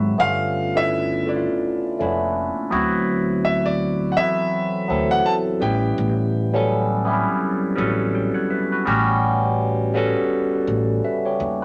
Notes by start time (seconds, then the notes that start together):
Already playing: G#1 F#3 B3 C4 E4 F#4 E5
0.18 G1 A3 B3 C#4 D4 F4 F5
0.75 A3 B3 C#4 D4 E4 E5
1.26 A3 B3 D4 E4 D5
1.36 F4
1.99 F1 A3 A#3 C#4 D4 E4
2.06 B3
2.70 D2 F#3 B3 C4 E4 F#4
3.45 E5
3.66 D5
4.12 F#5
4.16 E3 B3 C4 E4 A4 E5
4.23 F#3
4.88 D2 F#3 B3 C4 E4 A4
5.11 F#5
5.26 A5
5.60 A1 G3 B3 C#4 E4 G4 G5
5.98 A1
6.53 F#3 G3 B3 C#4 A4
7.05 G3 B3 C4 E4 G4
7.13 C#4
7.76 A1 G3 B3 C#4 F#4 A4
8.15 C#5 G5
8.34 C#5 F#5
8.50 B4 E5
8.72 F#4 B4
8.85 A1 G3 B3 C#4 F#4 G4
9.94 G3 B3 C#4 F#4 A4
10.67 A1
11.04 B4 E5
11.25 G4 C#5
11.40 D#2